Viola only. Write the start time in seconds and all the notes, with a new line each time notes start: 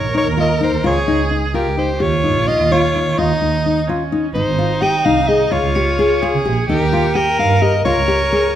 Already playing: A#4
0.87 G#4
1.55 G4
2.00 F4
3.18 D#4
3.88 C#4
4.35 D#4
5.50 F4
6.22 G#4
6.69 G4
7.16 A#4
7.86 A#4